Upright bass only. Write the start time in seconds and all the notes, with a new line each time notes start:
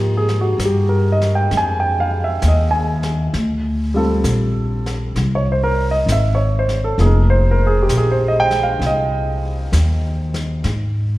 Already playing: G#2
0.58 G2
1.51 F2
2.43 D#2
3.33 D2
4.24 A#1
5.15 C2
6.06 G#1
6.98 F1
7.89 A#1
8.80 C2
9.72 D#2
10.64 G#2